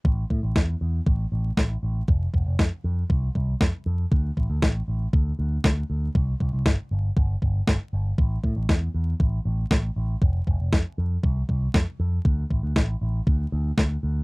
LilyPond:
<<
  \new Staff \with { instrumentName = "Picked electric bass" } { \clef bass \time 4/4 \key a \minor \tempo 4 = 118 a,,16 r16 a,16 a,,16 r8 e,16 r16 a,,16 r16 a,,16 r16 a,,16 r16 a,,16 r16 | f,,16 r16 f,,16 f,,16 f,16 r16 f,16 r16 c,16 r16 c,16 r16 f,16 r16 f,16 r16 | d,16 r16 a,,16 d,16 a,,16 r16 a,,16 r16 d,16 r16 d,16 r16 d,16 r16 d,16 r16 | c,16 r16 c,16 c,16 g,,16 r16 g,,16 r16 g,,16 r16 g,,16 r16 g,,16 r16 g,,16 r16 |
a,,16 r16 a,16 a,,16 r8 e,16 r16 a,,16 r16 a,,16 r16 a,,16 r16 a,,16 r16 | f,,16 r16 f,,16 f,,16 f,16 r16 f,16 r16 c,16 r16 c,16 r16 f,16 r16 f,16 r16 | d,16 r16 a,,16 d,16 a,,16 r16 a,,16 r16 d,16 r16 d,16 r16 d,16 r16 d,16 r16 | }
  \new DrumStaff \with { instrumentName = "Drums" } \drummode { \time 4/4 bd8 bd8 <bd sn>4 bd4 <bd sn>4 | bd8 bd8 <bd sn>4 bd8 bd8 <bd sn>4 | bd8 bd8 <bd sn>4 bd4 <bd sn>4 | bd8 bd8 <bd sn>4 bd8 bd8 <bd sn>4 |
bd8 bd8 <bd sn>4 bd4 <bd sn>4 | bd8 bd8 <bd sn>4 bd8 bd8 <bd sn>4 | bd8 bd8 <bd sn>4 bd4 <bd sn>4 | }
>>